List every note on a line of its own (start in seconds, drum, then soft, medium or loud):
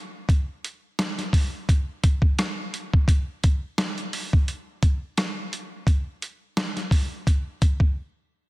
0.29 kick loud
0.29 closed hi-hat medium
0.65 closed hi-hat medium
0.99 cross-stick medium
0.99 snare loud
0.99 closed hi-hat medium
1.18 snare soft
1.18 closed hi-hat soft
1.33 kick medium
1.33 open hi-hat medium
1.69 kick loud
1.69 closed hi-hat medium
2.04 kick loud
2.04 closed hi-hat medium
2.22 kick loud
2.39 cross-stick loud
2.39 snare loud
2.39 closed hi-hat medium
2.74 closed hi-hat medium
2.94 kick medium
3.08 kick loud
3.08 closed hi-hat medium
3.44 kick loud
3.44 closed hi-hat medium
3.78 cross-stick loud
3.78 snare loud
3.78 closed hi-hat medium
3.98 closed hi-hat soft
4.13 open hi-hat medium
4.33 kick medium
4.48 closed hi-hat medium
4.83 kick medium
4.83 closed hi-hat medium
5.18 cross-stick loud
5.18 snare loud
5.18 closed hi-hat medium
5.53 closed hi-hat medium
5.87 kick loud
5.87 closed hi-hat medium
6.22 closed hi-hat medium
6.57 cross-stick medium
6.57 snare loud
6.57 closed hi-hat medium
6.77 snare soft
6.77 closed hi-hat medium
6.91 kick medium
6.91 open hi-hat medium
7.27 kick loud
7.27 closed hi-hat medium
7.62 kick loud
7.62 closed hi-hat medium
7.80 kick loud